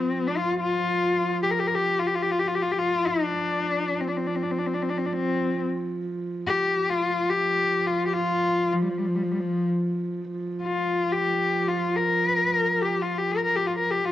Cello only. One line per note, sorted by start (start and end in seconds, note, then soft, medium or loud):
0.00 0.28 C4 medium
0.27 0.38 D4 medium
0.37 0.60 F4 medium
0.60 1.38 F4 medium
1.43 1.52 G4 medium
1.51 1.61 A#4 medium
1.59 1.69 G4 medium
1.67 1.76 A#4 medium
1.75 2.01 G4 medium
1.99 2.08 F4 medium
2.07 2.16 G4 medium
2.14 2.24 F4 medium
2.22 2.33 G4 medium
2.31 2.40 F4 medium
2.39 2.49 G4 medium
2.47 2.56 F4 medium
2.55 2.63 G4 medium
2.62 2.73 F4 medium
2.72 2.80 G4 medium
2.78 3.08 F4 medium
3.06 4.02 D4 medium
4.00 4.09 C4 soft
4.08 4.18 D4 medium
4.16 4.28 C4 medium
4.26 4.37 D4 medium
4.35 4.44 C4 medium
4.42 4.52 D4 medium
4.51 4.59 C4 medium
4.58 4.68 D4 medium
4.66 4.75 C4 medium
4.74 4.84 D4 medium
4.82 4.91 C4 medium
4.89 4.99 D4 medium
4.98 5.07 C4 medium
5.05 5.14 D4 medium
5.13 5.61 C4 medium
6.47 6.91 G4 medium
6.89 7.31 F4 medium
7.29 7.88 G4 medium
7.87 8.06 F4 medium
8.07 8.15 G4 medium
8.14 8.74 F4 medium
8.73 8.83 F3 medium
8.82 8.90 G3 medium
8.89 8.99 F3 soft
8.98 9.08 G3 medium
9.06 9.16 F3 medium
9.15 9.24 G3 medium
9.22 9.33 F3 medium
9.31 9.41 G3 soft
9.40 9.66 F3 medium
10.63 11.14 F4 medium
11.12 11.70 G4 medium
11.68 11.98 F4 medium
11.96 12.83 A#4 medium
12.82 13.03 G4 medium
13.02 13.20 F4 medium
13.18 13.33 G4 medium
13.32 13.44 A#4 medium
13.45 13.57 A#4 medium
13.56 13.68 G4 medium
13.66 13.78 F4 medium
13.78 13.92 A#4 medium
13.91 14.07 G4 medium
14.05 14.12 F4 medium